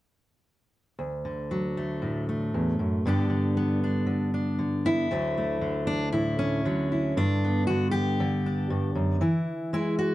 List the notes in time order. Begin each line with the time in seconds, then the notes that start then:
0.99 D2
1.25 D3
1.51 F#3
1.77 A3
2.02 A2
2.29 A3
2.54 E2
2.79 F#2
3.06 G2 D3 B3 D4 G4
3.30 D3
3.57 B3
3.84 D4
4.06 D3
4.34 D4
4.59 D3
4.85 B3 E4
5.11 D2 D3 F#3 A3
5.38 A3
5.62 D3
5.87 D4
6.13 A2 E4
6.39 C#4
6.65 D3 F#3
6.92 E4
7.17 G2 D4
7.45 B3
7.67 D3 F#4
7.91 G4
8.20 D3
8.46 D4
8.70 G2
8.95 F#2
9.21 E3 E4
9.73 G#3 E4
9.99 F#4